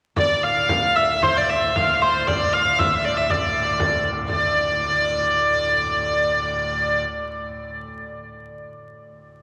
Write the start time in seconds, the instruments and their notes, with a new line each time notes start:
0.16 pipe organ D2 A2, hurdy-gurdy D5, frame drum
0.43 hurdy-gurdy F5, frame drum
0.69 frame drum
0.96 hurdy-gurdy E5, frame drum
1.22 hurdy-gurdy C5, frame drum
1.37 hurdy-gurdy D5
1.50 hurdy-gurdy E5, frame drum
1.76 hurdy-gurdy F5, frame drum
2.02 hurdy-gurdy C5, frame drum
2.27 hurdy-gurdy D5, frame drum
2.53 hurdy-gurdy F5, frame drum
2.79 hurdy-gurdy E5, frame drum
3.05 hurdy-gurdy D5, frame drum
3.17 hurdy-gurdy E5
3.30 hurdy-gurdy D5, frame drum
3.55 frame drum
3.80 frame drum
4.05 frame drum
4.29 pipe organ D2 A2, hurdy-gurdy D5, frame drum